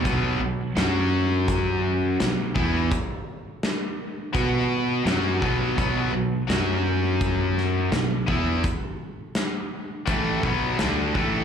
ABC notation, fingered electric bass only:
X:1
M:4/4
L:1/8
Q:1/4=84
K:F#mix
V:1 name="Fingered electric bass" clef=bass
B,,, B,,, F,,4 B,,, E,, | z4 B,,2 F,, B,,, | B,,, B,,, F,,4 B,,, E,, | z4 =A,,, B,,, =D,, A,,, |]